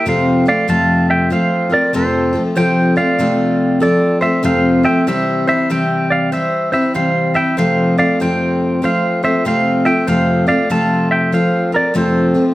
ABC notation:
X:1
M:4/4
L:1/16
Q:"Swing" 1/4=96
K:F
V:1 name="Pedal steel guitar"
[cf]2 [df]2 [fa]2 [eg]2 [cf]2 [Bd]2 [Ac]3 z | [cg]2 [df]6 [Ad]2 [ce]2 [cf]2 [eg]2 | [ce]2 [ce]2 [eg]2 [df]2 [ce]2 [ce]2 [cf]2 [eg]2 | [cf]2 [df]2 [cg]4 [cf]2 [ce]2 [cf]2 [eg]2 |
[cf]2 [df]2 [fa]2 [eg]2 [cf]2 [Bd]2 [Ac]3 z |]
V:2 name="Steel-string acoustic guitar"
[F,,C,F,A,CF]2 [F,A,CF]2 [F,,C,F,A,CF]4 [F,A,CF]2 [F,CF]2 [F,,C,F,A,CF]2 [F,A,CF]2 | [F,,C,F,A,CF]2 [F,CF]2 [F,,C,F,A,CF]4 [F,A,CF]2 [F,A,CF]2 [F,,C,F,A,CF]2 [F,A,CF]2 | [C,E,G,CE]2 [G,CE]2 [C,E,G,C]4 [E,G,CE]2 [G,CE]2 [C,E,G,C]2 [G,CE]2 | [F,,C,F,A,CF]2 [F,A,CF]2 [F,,C,F,A,CF]4 [F,A,CF]2 [F,A,CF]2 [F,,C,F,A,CF]2 [F,A,CF]2 |
[F,,C,F,A,CF]2 [F,A,CF]2 [F,,C,F,A,CF]4 [F,A,CF]2 [F,CF]2 [F,,C,F,A,CF]2 [F,A,CF]2 |]